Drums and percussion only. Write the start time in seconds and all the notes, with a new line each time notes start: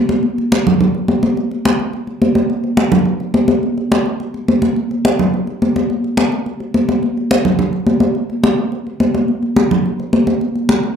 0.09 high conga
0.23 high conga
0.38 high conga
0.52 high conga
0.67 high conga, low conga
0.81 high conga, low conga
0.94 high conga
1.08 high conga
1.23 high conga
1.37 high conga
1.51 high conga
1.65 high conga
1.79 high conga
1.93 high conga
2.07 high conga
2.22 high conga
2.35 high conga
2.50 high conga
2.64 high conga
2.77 high conga
2.92 high conga, low conga
3.05 high conga
3.20 high conga
3.34 high conga
3.48 high conga
3.63 high conga
3.78 high conga
3.92 high conga
4.06 high conga
4.20 high conga
4.34 high conga
4.48 high conga
4.62 high conga
4.76 high conga
4.91 high conga
5.05 high conga
5.19 high conga, low conga
5.34 high conga
5.47 high conga
5.62 high conga
5.76 high conga
5.90 high conga
6.04 high conga
6.17 high conga
6.32 high conga
6.46 high conga
6.60 high conga
6.74 high conga
6.89 high conga
7.03 high conga
7.17 high conga
7.31 high conga
7.45 high conga, low conga
7.59 high conga, low conga
7.73 high conga
7.86 high conga
8.00 high conga
8.15 high conga
8.30 high conga
8.44 high conga
8.58 high conga
8.72 high conga
8.87 high conga
9.00 high conga
9.14 high conga
9.28 high conga
9.43 high conga
9.56 high conga
9.71 high conga, low conga
9.86 high conga
10.00 high conga
10.13 high conga
10.27 high conga
10.41 high conga
10.55 high conga
10.69 high conga
10.83 high conga